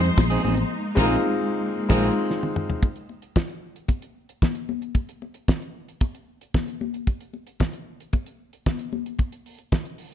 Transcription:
Already playing: string section F3 G#3 D#4 C5 C6, grand piano G#3 C4 D#4 G4
0.04 muted clean electric guitar stroke, closed hi-hat
0.17 fingered electric bass A#1, muted clean electric guitar stroke, kick, snare, tambourine, high conga
0.30 clean electric guitar C4 D#4 G#4, closed hi-hat
0.43 fingered electric bass A1, clean electric guitar C4 D#4 G#4, open hi-hat, high conga
0.57 muted clean electric guitar stroke, closed hi-hat, high conga
0.70 string section G#3 A#3
0.95 fingered electric bass A#1, grand piano G#3 C4 D#4 F4, clean electric guitar C4 D#4 G#4, string section A#4 A#5, kick, snare, crash
1.89 fingered electric bass A#1, grand piano G#3 C4 D#4 F4, clean electric guitar C4 D#4 G#4, string section A#4 A#5, kick, snare, crash
2.30 snare
2.43 high tom
2.56 mid tom
2.70 floor tom
2.82 kick, closed hi-hat, muted conga
2.96 closed hi-hat
3.09 muted conga
3.22 closed hi-hat
3.36 kick, snare, high conga
3.49 closed hi-hat
3.76 closed hi-hat
3.88 kick, closed hi-hat, muted conga
4.02 closed hi-hat
4.29 closed hi-hat
4.42 kick, snare, high conga
4.55 closed hi-hat
4.69 high conga
4.82 closed hi-hat
4.95 kick, closed hi-hat, muted conga
5.09 closed hi-hat
5.22 muted conga
5.34 closed hi-hat
5.48 kick, snare, high conga
5.62 closed hi-hat
5.88 closed hi-hat
6.01 kick, closed hi-hat, muted conga
6.14 closed hi-hat
6.41 closed hi-hat
6.54 kick, snare, high conga
6.67 closed hi-hat
6.81 high conga
6.94 closed hi-hat
7.07 kick, closed hi-hat, muted conga
7.21 closed hi-hat
7.33 muted conga
7.47 closed hi-hat
7.60 kick, snare, high conga
7.73 closed hi-hat
8.00 closed hi-hat
8.13 kick, closed hi-hat, muted conga
8.26 closed hi-hat
8.53 closed hi-hat
8.66 kick, snare, high conga
8.79 closed hi-hat
8.93 high conga
9.06 closed hi-hat
9.19 kick, closed hi-hat, muted conga
9.32 closed hi-hat
9.46 open hi-hat
9.58 closed hi-hat
9.72 kick, snare, high conga
9.85 closed hi-hat
9.98 open hi-hat

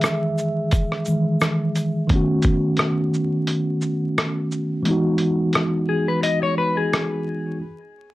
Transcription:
Already playing: tine electric piano D#3 E3 G#3 G#4 E5
0.01 cross-stick, closed hi-hat, shaker
0.38 shaker
0.71 kick, closed hi-hat, shaker
0.92 cross-stick
1.05 tine electric piano D#3 E3 G#3, shaker
1.41 cross-stick, closed hi-hat, shaker
1.76 closed hi-hat, shaker
2.07 tine electric piano D#3 A3 B3, kick, closed hi-hat
2.13 tine electric piano C#4 F#4
2.42 kick, closed hi-hat, shaker
2.77 cross-stick, closed hi-hat
3.14 shaker
3.47 closed hi-hat
3.81 shaker
4.18 cross-stick, closed hi-hat
4.52 shaker
4.83 tine electric piano E3 G#3 B3, closed hi-hat
4.89 tine electric piano D#4 F#4
5.18 closed hi-hat
5.53 cross-stick, closed hi-hat
5.89 clean electric guitar G#4
6.08 clean electric guitar B4
6.23 clean electric guitar D#5, closed hi-hat
6.43 clean electric guitar C#5
6.58 clean electric guitar B4
6.77 clean electric guitar G#4
6.93 cross-stick, closed hi-hat

